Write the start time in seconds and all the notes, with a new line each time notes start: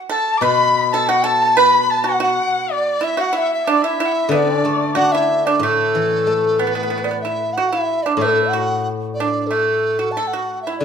0.09 A4 A5
0.37 B2 D6
0.41 B4 B5
0.92 A4 A5
1.09 F#4 F#5
1.24 A4 A5
1.57 B4 B5
1.90 A5
2.04 F#4 F#5
2.08 F#5
2.20 F#4 F#5
2.70 D5
3.01 E4 E5
3.17 F#4 F#5
3.22 F#5
3.33 E4 E5
3.38 E5 F#5
3.42 E5
3.50 E5
3.67 D4 D5
3.82 E4 E5
3.98 E4 E5
4.03 E5 F#5
4.12 E5
4.24 E5
4.29 D3 B3 D5
4.35 D5
4.61 A3 D4
4.95 D4 F#4 F#5
5.12 E4 E5
5.46 D4 D5
5.59 A2 A3 A4
5.95 E3
6.27 A3
6.59 B3 B4
6.67 B3
6.75 B3
6.83 B3
6.90 B3
6.98 B3
7.04 B3 D5
7.11 B3
7.21 E4 E5
7.53 F#5
7.57 F#4
7.69 E4 E5
8.03 D4 D5
8.16 A2 A4
8.21 A3
8.48 F#5
8.53 F#4
9.14 D5
9.20 D4
9.47 A3 A4
9.99 F#4
10.12 A5
10.17 A4
10.27 F#5
10.33 F#4
10.62 E5
10.67 E4
10.78 D3 D5